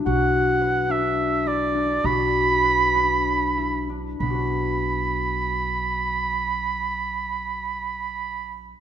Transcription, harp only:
\new Staff \with { instrumentName = "Harp" } { \time 7/8 \key b \minor \tempo 4 = 92 fis'4 b'8 d'4 e'8 d'8 | fis'4 b'8 d'4 e'8 d'8 | <b d' fis' b'>2.~ <b d' fis' b'>8~ | <b d' fis' b'>2.~ <b d' fis' b'>8 | }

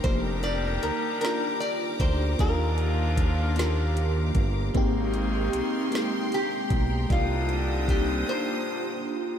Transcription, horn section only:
\new Staff \with { instrumentName = "Horn section" } { \clef bass \time 6/8 \key c \minor \tempo 4. = 51 <ees g d' g'>2~ <ees g d' g'>8 r8 | <d f bes f'>2~ <d f bes f'>8 r8 | <c ees bes ees'>2~ <c ees bes ees'>8 r8 | <bes, d g d'>2~ <bes, d g d'>8 r8 | }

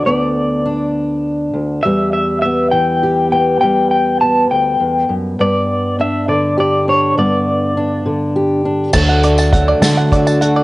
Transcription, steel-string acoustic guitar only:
\new Staff \with { instrumentName = "Steel-string acoustic guitar" } { \time 6/8 \key d \major \tempo 4. = 68 << { b4 d'2 | g4 b4 g'8 b8 | g4 b2 | b4 d'4 g'8 d'8 |
b4 d'4 g'8 d'8 | a8 d'8 a4. a'8 | } \\ { <d, d>2~ <d, d>8 d,8 | e,4. e4. | e,4. d,8 e,8 fis,8 | g,4. d4. |
g,4. d4. | d,4. d4. | } >> }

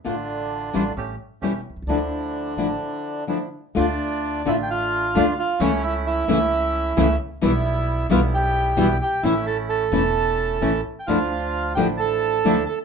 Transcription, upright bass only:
\new Staff \with { instrumentName = "Upright bass" } { \clef bass \time 4/4 \key d \minor \tempo 4 = 131 a,,4~ a,,16. r32 a,,16. r32 a,,16. r8 r32 e,,16. r16 b,,32 c,32 cis,32 | d,4~ d,16. r32 a,,16. r2 r32 | d,4~ d,16. r32 a,,4~ a,,16. r32 d,16. r8 r32 | cis,4~ cis,16. r32 cis,4~ cis,16. r32 cis,16. r8 r32 |
b,,4~ b,,16. r32 b,,4~ b,,16. r32 b,,16. r8 r32 | a,,4~ a,,16. r32 e,,4~ e,,16. r32 a,,16. r8 r32 | d,4~ d,16. r32 a,,4~ a,,16. r32 d,16. r8 r32 | }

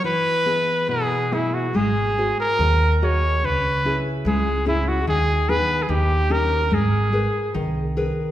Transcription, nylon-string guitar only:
\new Staff \with { instrumentName = "Nylon-string guitar" } { \time 2/4 \key gis \minor \tempo 4 = 72 e8 <b e' gis'>8 b,8 <b e' gis'>8 | gis8 <fis' gis' bis'>8 dis8 <fis' gis' dis''>8 | cis8 <cis' e' gis'>8 gis8 <cis' e' gis'>8 | dis8 <b dis' gis'>8 dis8 <cis' dis' g'>8 |
gis8 <gis' ais' b'>8 dis8 <gis' ais' b'>8 | }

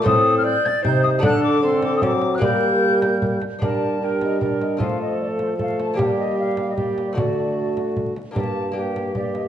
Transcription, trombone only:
\new Staff \with { instrumentName = "Trombone" } { \time 3/4 \key g \minor \tempo 4 = 152 c'4. r8 ees'4 | d'4 c'2 | bes2~ bes8 r8 | d'4 d'4 d'4 |
a2 a4 | bes2 bes4 | a2~ a8 r8 | bes4 bes4 bes4 | }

